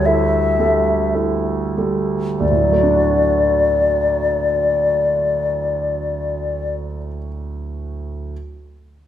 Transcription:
Already playing: grand piano D2 G3 A4
0.06 grand piano E4 A4, flute E5
0.60 grand piano G3 A4
1.15 grand piano E4 A4
1.77 grand piano G3 A4
2.40 grand piano D2, flute D5
2.51 grand piano A2
2.62 grand piano F#3
2.72 grand piano A3
2.83 grand piano D4
2.93 grand piano F#4

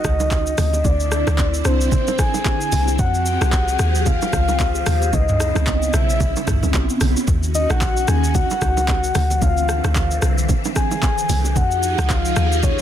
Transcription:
Already playing: string machine D#3 C#4 F#4, soft synth lead D#5
0.04 log drum bass C#2, kick, cross-stick, high bongo, shaker
0.20 low bongo, shaker
0.31 kick, clap, high bongo, shaker
0.47 shaker
0.58 log drum bass D2, string machine D3 C4 E4, cross-stick, open hi-hat, low conga, shaker
0.73 high bongo, shaker
0.84 log drum bass D2, soft synth lead D5, kick, low conga, shaker
1.00 shaker
1.12 cross-stick, shaker
1.27 log drum bass D2, cross-stick, low bongo, shaker
1.38 kick, clap, high bongo, shaker
1.54 shaker
1.65 log drum bass C2, soft synth lead C5, cross-stick, shaker
1.81 shaker
1.92 kick, low conga, shaker
2.07 low bongo, shaker
2.19 soft synth lead G#5, kick, cross-stick, high bongo, shaker
2.34 low bongo, shaker
2.45 kick, clap, high bongo, shaker
2.61 shaker
2.72 log drum bass C2, open hi-hat, low conga, shaker
2.88 high bongo, shaker
2.99 log drum bass F2, string machine F3 C4 G4 G#4, soft synth lead F#5, kick, low conga, shaker
3.14 shaker
3.26 shaker
3.41 log drum bass C2, cross-stick, low bongo, shaker
3.52 kick, clap, high bongo, shaker
3.68 shaker
3.79 log drum bass D#2, cross-stick, shaker
3.95 shaker
4.06 soft synth lead F5, kick, low conga, shaker
4.22 low bongo, shaker
4.33 log drum bass C#2, kick, cross-stick, high bongo, shaker
4.48 low bongo, shaker
4.60 kick, clap, high bongo, shaker
4.75 shaker
4.86 log drum bass D#2, cross-stick, open hi-hat, low conga, shaker
5.02 high bongo, shaker
5.13 log drum bass C#2, string machine C#3 B3 E4, soft synth lead D#5, kick, low conga, shaker
5.29 mid tom, shaker
5.40 cross-stick, low bongo, shaker
5.55 log drum bass C#2, cross-stick, low bongo, shaker
5.67 kick, clap, high bongo, shaker
5.82 shaker
5.94 log drum bass B1, soft synth lead E5, cross-stick, shaker
6.10 shaker
6.20 log drum bass B1, kick, low conga, shaker
6.36 low bongo, shaker
6.47 log drum bass C#2, kick, cross-stick, mid tom, high bongo, shaker
6.63 log drum bass C#2, low bongo, shaker
6.74 log drum bass B1, kick, clap, high bongo, shaker
6.90 shaker
7.01 log drum bass B1, cross-stick, open hi-hat, low conga, shaker
7.16 high bongo, shaker
7.27 log drum bass D#2, string machine D#3 C#4 F#4, kick, low conga, shaker
7.43 shaker
7.55 soft synth lead D#5, shaker
7.70 log drum bass A#1, soft synth lead F#5, cross-stick, low bongo, shaker
7.81 kick, clap, high bongo, shaker
7.97 shaker
8.08 log drum bass D#2, soft synth lead G#5, cross-stick, shaker
8.24 shaker
8.35 soft synth lead F#5, kick, low conga, shaker
8.50 low bongo, shaker
8.62 log drum bass C#2, kick, cross-stick, high bongo, shaker
8.77 low bongo, shaker
8.88 kick, clap, high bongo, shaker
9.04 shaker
9.15 log drum bass D2, string machine D3 E3 C4, cross-stick, open hi-hat, low conga, shaker
9.30 high bongo, shaker
9.42 log drum bass D2, soft synth lead F5, kick, low conga, shaker
9.57 shaker
9.69 cross-stick, shaker
9.84 log drum bass D2, cross-stick, low bongo, shaker
9.95 kick, clap, high bongo, shaker
10.11 shaker
10.22 log drum bass C2, cross-stick, shaker
10.38 shaker
10.49 kick, low conga, shaker
10.65 low bongo, shaker
10.76 soft synth lead G#5, kick, cross-stick, high bongo, shaker
10.91 low bongo, shaker
11.03 kick, clap, high bongo, shaker
11.18 shaker
11.29 log drum bass C2, open hi-hat, low conga, shaker
11.45 high bongo, shaker
11.51 soft synth lead G#5
11.56 log drum bass F2, string machine F3 D#4 G4 G#4, soft synth lead F#5, kick, low conga, shaker
11.71 shaker
11.83 shaker
11.98 log drum bass C#2, cross-stick, low bongo, shaker
12.10 soft synth lead F5, kick, clap, high bongo, shaker
12.25 shaker
12.36 log drum bass D#2, cross-stick, shaker
12.52 shaker
12.63 soft synth lead C#5, kick, low conga, shaker

